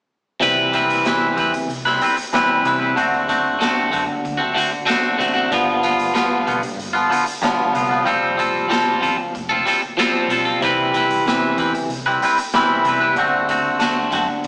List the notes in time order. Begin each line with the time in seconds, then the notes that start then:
0.40 C2 C3 E3 G3 C4 E4 B4, kick, closed hi-hat
0.73 G3 C4 E4 B4, kick, closed hi-hat
0.90 closed hi-hat
1.05 C3 E3 G3 C4 E4 B4, snare, closed hi-hat
1.36 E2 G3 C4 E4 B4, kick, closed hi-hat
1.54 muted clean electric guitar stroke, closed hi-hat
1.68 C2, closed hi-hat
1.85 G3 C4 E4 B4, snare
2.01 G3 C4 E4 B4, closed hi-hat
2.17 muted clean electric guitar stroke, closed hi-hat
2.33 C3 E3 G3 C4 E4 B4, snare, closed hi-hat
2.64 C2 G3 C4 E4 B4, closed hi-hat
2.80 G3 C4 E4 B4
2.95 D2 D3 A3 C4 F#4, kick, closed hi-hat
3.28 D3 A3 C4 F#4, kick, closed hi-hat
3.59 D3 A3 C4 F#4, snare, closed hi-hat
3.91 F#2 D3 A3 C4 F#4, kick, closed hi-hat
4.06 muted clean electric guitar stroke
4.25 D2, kick, closed hi-hat
4.37 A3 C4 F#4
4.54 D3 A3 C4 F#4, closed hi-hat
4.72 muted clean electric guitar stroke
4.86 D3 A3 C4 F#4, closed hi-hat
4.90 snare
5.17 A1 D3 A3 C4 F#4, closed hi-hat
5.34 A3 C4 F#4
5.51 G1 G2 D3 F3 B3 F4, kick, closed hi-hat
5.82 D3 F3 B3 F4, kick, closed hi-hat
5.99 closed hi-hat
6.13 G2 D3 F3 B3 F4, snare, closed hi-hat
6.46 B1 D3 F3 B3 F4, kick, closed hi-hat
6.63 muted clean electric guitar stroke, closed hi-hat
6.77 G1, closed hi-hat
6.93 F3 B3 F4
7.09 D3 F3 B3 F4, closed hi-hat
7.26 muted clean electric guitar stroke, closed hi-hat
7.42 G2 D3 F3 B3 F4, snare, closed hi-hat
7.73 C2 D3 F3 B3 F4, closed hi-hat
7.89 F3 B3 F4
8.04 F1 F3 G3 C4 F4 A4, kick, closed hi-hat
8.37 G3 C4 F4 A4, kick, closed hi-hat
8.68 F3 G3 C4 F4 A4, closed hi-hat
8.72 snare
9.00 A1 G3 C4 F4 A4, kick, closed hi-hat
9.17 muted clean electric guitar stroke
9.35 F1, kick, closed hi-hat
9.49 C4 F4 A4
9.66 G3 C4 F4 A4, closed hi-hat
9.82 muted clean electric guitar stroke
9.97 F3 G3 C4 F4 A4, snare, closed hi-hat
10.28 B1 G3 C4 F4, closed hi-hat
10.32 A4
10.45 C4 F4 A4
10.61 C2 C3 E3 G3 C4 E4 B4, kick, closed hi-hat
10.94 G3 C4 E4 B4, kick, closed hi-hat
11.10 closed hi-hat
11.26 C3 E3 G3 C4 E4 B4, snare, closed hi-hat
11.57 E2 G3 C4 E4 B4, kick, closed hi-hat
11.74 muted clean electric guitar stroke, closed hi-hat
11.88 C2, closed hi-hat
12.06 G3 C4 E4 B4
12.22 G3 C4 E4 B4, closed hi-hat
12.38 muted clean electric guitar stroke, closed hi-hat
12.53 C3 E3 G3 C4 E4 B4, snare, closed hi-hat
12.84 C2 G3 C4 E4, closed hi-hat
12.88 B4
13.00 G3 C4 E4 B4
13.16 D2 D3 A3 C4 F#4, kick, closed hi-hat
13.48 D3 A3 C4 F#4, kick, closed hi-hat
13.79 D3 A3 C4 F#4, snare, closed hi-hat
14.11 F#2 D3 A3 C4 F#4, kick, closed hi-hat
14.29 muted clean electric guitar stroke
14.44 closed hi-hat